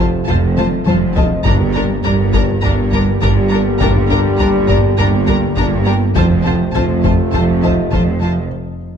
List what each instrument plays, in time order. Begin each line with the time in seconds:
Already playing: double bass section F1, cello section F2, trombone section C3 F3, felt piano A3 C4 A4 C5, french horn section A3 A4, analog synth pad A3 C4 F4 C5
0.00 analog synth bass F2, synth arpeggio sound F3
0.27 double bass section F1, cello section F2, analog synth bass F2, synth arpeggio sound F4, viola section F4, violin section C5 A5, taiko low
0.57 analog synth bass F3, viola section F4, violin section C5 A5, taiko high
0.86 double bass section F1, cello section F2, analog synth bass F2, synth arpeggio sound F3, viola section F4, violin section C5 A5, taiko high
1.16 analog synth bass F3, viola section F4, violin section C5 A5, felt piano D#5, taiko low
1.45 double bass section G1, cello section G2, analog synth bass G2, analog synth pad D3 A#3 G4 A#4, trombone section D3 G3, synth arpeggio sound G3, french horn section A#3 G4, viola section D4, violin section A#4 A#5, taiko
1.75 analog synth bass G3, synth arpeggio sound D4, viola section D4, violin section A#4 A#5, taiko low
2.04 double bass section G1, cello section G2, analog synth bass G3, viola section D4, violin section A#4 A#5, taiko low
2.33 analog synth bass G2, synth arpeggio sound G3, viola section D4, violin section A#4 A#5, taiko
2.62 double bass section G1, cello section G2, analog synth bass G2, viola section D4, synth arpeggio sound G4, violin section A#4 A#5, taiko low
2.92 analog synth bass G3, viola section D4, violin section A#4 A#5, taiko low
3.21 double bass section G1, analog synth bass G2, cello section G2, synth arpeggio sound G3, viola section D4, violin section A#4 A#5, taiko
3.50 analog synth bass G3, viola section D4, violin section A#4 A#5
3.80 double bass section G1, analog synth bass G2, cello section G2, synth arpeggio sound G3, viola section D4, violin section A#4 A#5, felt piano G5, taiko
4.09 analog synth bass G3, synth arpeggio sound D4, viola section D4, violin section A#4 A#5, taiko low
4.38 double bass section G1, cello section G2, analog synth bass G3, viola section D4, violin section A#4 A#5, taiko low
4.67 analog synth bass G2, synth arpeggio sound G3, viola section D4, violin section A#4 A#5, felt piano D5, taiko
4.97 double bass section G1, analog synth bass G2, cello section G2, viola section D4, synth arpeggio sound G4, violin section A#4 A#5, taiko low
5.26 analog synth bass G3, viola section D4, violin section A#4 A#5, taiko low
5.56 double bass section G1, cello section G2, analog synth bass G2, synth arpeggio sound G3, viola section D4, violin section A#4 A#5, taiko
5.85 analog synth bass G3, viola section D4, felt piano G4 G5, violin section A#4 A#5
6.15 double bass section F1, cello section F2, analog synth bass F2, trombone section C3 A3, synth arpeggio sound F3, analog synth pad A3 C4 F4 C5, french horn section C4 F4, viola section F4, violin section C5 A5, taiko
6.44 analog synth bass F3, synth arpeggio sound C4, viola section F4, violin section C5 A5, taiko low
6.74 double bass section F1, cello section F2, analog synth bass F3, viola section F4, violin section C5 A5, taiko low
7.03 analog synth bass F2, synth arpeggio sound F3, viola section F4, violin section C5 A5, taiko
7.32 double bass section F1, cello section F2, analog synth bass F2, synth arpeggio sound F4, viola section F4, violin section C5 A5, taiko low
7.62 analog synth bass F3, felt piano D#4 D#5, viola section F4, violin section C5 A5, taiko low
7.91 double bass section F1, cello section F2, analog synth bass F2, synth arpeggio sound F3, viola section F4, violin section C5 A5, taiko
8.21 analog synth bass F3, viola section F4, violin section C5 A5